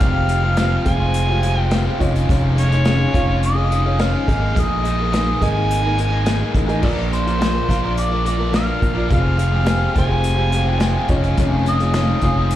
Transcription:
Already playing: F5
0.00 F1 F2 C3 F3 G#3 C4 F4 G4 F5, kick, closed hi-hat
0.28 F3 G#3 C4 F4, closed hi-hat
0.44 F3 G#3 C4 F4 G4
0.57 F2 C3 F3 G#3 C4 F4 G4, snare, closed hi-hat
0.85 F1 F3 G#3 C4 F4 G#4 F5 G#5, kick, closed hi-hat
1.00 F3 G#3 C4 F4
1.14 closed hi-hat
1.28 F3 G#3 C4 F4 G4
1.43 F3 G#3 C4 F4 G4, closed hi-hat
1.57 F3 G#3 C4 F4 G5
1.71 F2 C3 F3 G#3 C4, snare, closed hi-hat
1.75 F4 G4
1.87 F3 G#3 C4 F4
1.98 F1 F3 C#4 D#4 F4 G#4 C#5 D#5, kick, closed hi-hat
2.02 G#3 D#4 F4 G#4
2.16 G#3 C#4 F4, closed hi-hat
2.29 F1 F2 D#3 F3 G#3 C#4 D#4 F4 G#4, kick, closed hi-hat
2.56 F3 G#3 C#4 F4 C#5, closed hi-hat
2.71 G#3 C#4 D#4 F4 G#4, closed hi-hat
2.85 F2 D#3 F3 G#3 C#4 D#4 F4 G#4, snare, closed hi-hat
3.13 F1 F3 G#3 C#4 D#4 F4 G#4 C#5 F5, kick, closed hi-hat
3.28 G#3 C#4 F4
3.43 D#5, closed hi-hat
3.55 G#3 C#4 D#4 F4 G#4
3.70 F3 G#3 C#4 D#4 F4 G#4, closed hi-hat
3.75 D#5
3.85 G#3 C#4 D#4 F4 G#4
3.98 F2 D#3 F3 G#3 C#4 D#4 G#4, snare, closed hi-hat
4.02 F4 F5
4.13 G#3 C#4 F4
4.28 G#1 G#3 A#3 D#4 G#4 A#4 D#5, kick, closed hi-hat
4.40 A#3 D#4 G#4
4.54 A#1 G#3 A#3 D#4 G#4, kick, closed hi-hat
4.61 D#5
4.82 G#3 A#3 D#4 G#4, closed hi-hat
4.97 A#3 D#4 G#4
5.12 G#3 A#3 D#4 G#4, snare, closed hi-hat
5.17 A#3
5.41 G#1 G#3 A#3 D#4 G#4 A#4 D#5, kick, closed hi-hat
5.45 G#5
5.55 A#3 D#4 G#4
5.71 closed hi-hat
5.82 A#3 D#4 G#4
5.96 G#3 A#3 D#4 G#4, closed hi-hat
6.12 A#3 D#4 G#4
6.24 G#3 A#3 D#4 G#4, snare, closed hi-hat
6.40 A#3 D#4 G#4
6.54 A1 G#3 A#3 D#4 G#4, kick, closed hi-hat
6.67 A#3 D#4 G#4 A#4 D#5, closed hi-hat
6.80 A#1 A#2 D3 F3 A#3 D4 F4 A#4 D5, kick, crash
6.84 F4 A#4
7.12 F3 A#3 D4 A#4 C5, closed hi-hat
7.26 F3 A#3 D4 F4 A#4, closed hi-hat
7.39 A#2 D3 F3 A#3 D4 F4 A#4, snare, closed hi-hat
7.69 A#1 F3 A#3 D4 F4 A#4 F5, kick, closed hi-hat
7.85 F3 A#3 D4 A#4
7.97 D5, closed hi-hat
8.10 A#3 D4 F4 A#4
8.14 F3
8.25 F3 A#3 D4 F4 A#4 D5, closed hi-hat
8.38 F3 A#3 D4 F4 A#4
8.53 A#2 D3 F3 A#3 D4 F4 A#4 F5, snare, closed hi-hat
8.66 F3 A#3 D4 A#4
8.80 A#1 F3 A#3 D4 F4, kick, closed hi-hat
8.94 F3 A#3 D4 F4 A#4 D5
9.08 F1 F2 C3 F3 G#3 C4 F4 G#4, kick, closed hi-hat
9.13 G#3 C4 F4 F5
9.37 F3 C4 F4 G#4, closed hi-hat
9.51 F3 G#3 C4 F4 G4 G#4
9.63 F2 C3 F3 G#3 C4 G4, snare, closed hi-hat
9.68 F4 G#4
9.94 F1 F3 G#3 C4 F4 G4 G#4 G#5, kick, closed hi-hat
9.98 C5
10.06 F3 G#3 F4 G4 G#4
10.11 C4
10.24 closed hi-hat
10.36 F3 G#3 C4 F4 G4 G#4
10.51 F3 G#3 C4 F4 G4 G#4, closed hi-hat
10.64 F3 G#3 C4 G4
10.68 C4 F4 G#4
10.77 F2 C3 G#3 G4, snare, closed hi-hat
10.81 F3 C4 F4 G#4
10.96 C4 F4 G#4
11.07 F1 F3 G#3 C#4 D#4 F4 G#4 C#5 D#5, kick, closed hi-hat
11.12 D#4 F4
11.23 C#4 F4 G#4, closed hi-hat
11.37 F1 F2 D#3 F3 G#3 C#4 D#4 F4 G#4, kick, closed hi-hat
11.65 F3 C#4 F4 G#4 D#5, closed hi-hat
11.79 C#4 D#4 F4 G#4, closed hi-hat
11.83 G#3
11.94 F2 D#3 F3 G#3 C#4 D#4 F4 G#4, snare, closed hi-hat
12.21 F1 F3 G#3 C#4 D#4 F4 G#4 C#5 F5, kick, closed hi-hat
12.38 C#4 F4 G#4
12.51 closed hi-hat

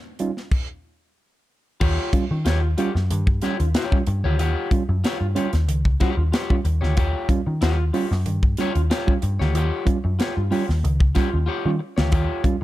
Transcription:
0.19 G3 C#4 D#4 F4, closed hi-hat
0.37 snare
0.51 kick, crash
1.80 D#2 D#3 F4 G4 C#5, kick, crash
2.13 G3 C#4 F4, muted picked electric bass stroke, kick, closed hi-hat
2.31 D#3 C#4 F4, muted clean electric guitar stroke
2.45 D#2 F4 G4 C#5, snare, closed hi-hat
2.63 muted clean electric guitar stroke
2.77 G3 C#4 F4 G4 C#5, closed hi-hat
2.95 F#2, muted clean electric guitar stroke, snare
3.10 G2 D#3, closed hi-hat
3.27 muted clean electric guitar stroke, kick
3.42 G3 C#4 F4 G4 C#5, snare, closed hi-hat
3.60 D#2 C#4 F4, muted clean electric guitar stroke, closed hi-hat
3.74 F4 G4 C#5, snare, closed hi-hat
3.92 G3 C#4 F4, kick
4.07 G2, muted clean electric guitar stroke, closed hi-hat
4.23 D2 D#3 F4 G4 C#5
4.39 D#2 D#3 F4 G4 C#5, closed hi-hat
4.71 G3 C#4 F4, kick, closed hi-hat
4.89 F#2 C#4 F4, muted clean electric guitar stroke
5.04 F4 G4 C#5, snare, closed hi-hat
5.20 G2, muted clean electric guitar stroke
5.35 G3 C#4 F4 G4 C#5, closed hi-hat
5.53 D#2, muted clean electric guitar stroke, snare, closed hi-hat
5.68 C#2 D#3, closed hi-hat
5.85 muted clean electric guitar stroke, kick
6.00 G3 C#4 F4 G4 C#5, kick, snare, closed hi-hat
6.17 D#2 C#4 F4, muted clean electric guitar stroke
6.32 F4 G4 C#5, snare, closed hi-hat
6.50 G3 C#4 F4, kick
6.65 D#2, muted clean electric guitar stroke, closed hi-hat
6.81 D2 D#3 F4 G4 C#5, snare
6.97 D#2 D#3 F4 G4 C#5, kick, closed hi-hat
7.29 G3 C#4 F4, muted picked electric bass stroke, kick, closed hi-hat
7.46 D#3 C#4 F4, muted clean electric guitar stroke
7.61 D#2 F4 G4 C#5, snare, closed hi-hat
7.79 muted clean electric guitar stroke
7.93 G3 C#4 F4 G4 C#5, open hi-hat
8.11 F#2, muted clean electric guitar stroke, snare
8.26 G2 D#3, closed hi-hat
8.43 muted clean electric guitar stroke, kick
8.57 G3 C#4 F4 G4 C#5, snare, closed hi-hat
8.75 D#2 C#4 F4, muted clean electric guitar stroke, closed hi-hat
8.90 F4 G4 C#5, snare, closed hi-hat
9.07 G3 C#4 F4, kick
9.22 G2, muted clean electric guitar stroke, closed hi-hat
9.39 D2 D#3 F4 G4 C#5, snare
9.54 D#2 D#3 F4 G4 C#5, closed hi-hat
9.86 G3 C#4 F4, kick, closed hi-hat
10.04 F#2 C#4 F4, muted clean electric guitar stroke
10.19 F4 G4 C#5, snare, closed hi-hat
10.36 G2, muted clean electric guitar stroke
10.51 G3 C#4 F4 G4 C#5, open hi-hat
10.68 D#2, muted clean electric guitar stroke, snare
10.84 C#2 D#3, closed hi-hat
11.00 muted clean electric guitar stroke, kick
11.15 G3 C#4 F4 G4 C#5, kick, snare, closed hi-hat
11.32 D#2 C#4 F4, muted clean electric guitar stroke
11.46 F4 G4 C#5
11.65 D#3 G3 C#4 F4
11.79 muted clean electric guitar stroke
11.97 D2 D#3 F4 G4 C#5, snare
12.12 D#2 D#3 F4 G4 C#5, kick, closed hi-hat
12.44 G3 C#4 F4, muted picked electric bass stroke, kick, closed hi-hat

